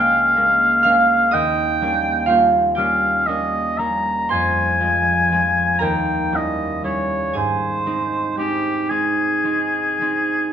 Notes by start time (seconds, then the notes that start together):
Already playing: C#2 G#3 A#3 C#4 F5 G5 G#5 F6 G6 G#6
0.36 G#3 A#3 C#4
0.83 G#3 A#3 C#4 F5 F6
1.31 D#2 D#5 G5 D#6
1.81 G3 A#3 C#4
2.26 G3 A#3 C#4 F4 F5
2.75 G3 A#3 C#4 G4 F5 G5
3.27 G3 A#3 C#4 D#5
3.78 G3 A#3 C#4 A#5
4.29 F2 C5 G#5 C6
4.80 F3 G#3 C4
5.32 F3 G#3 C4
5.79 D#2 A#4 G5 A#5
6.32 G3 C#4 E4 D#5
6.84 G3 C#4 E4 C#5
7.33 G#2 G#4 C5 G#5
7.86 G#3 C4 D#4
8.37 G#3 C4 D#4 G4
8.90 G#3 C4 D#4 G#4
9.44 G#3 C4 D#4
10.01 G#3 C4 D#4